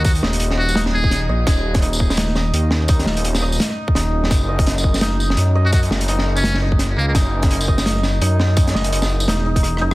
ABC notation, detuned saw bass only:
X:1
M:4/4
L:1/8
Q:"Swing 16ths" 1/4=169
K:Gbmix
V:1 name="Detuned saw bass" clef=bass
E,, E,,,3 E,,,3 B,,, | E,,,6 E,,2- | E,, E,,,3 z2 E,,,2 | G,,,6 G,,2- |
G,, G,,,3 G,,,3 D,, | G,,,6 G,,2- | G,, G,,,3 F,,,3 G,,, |]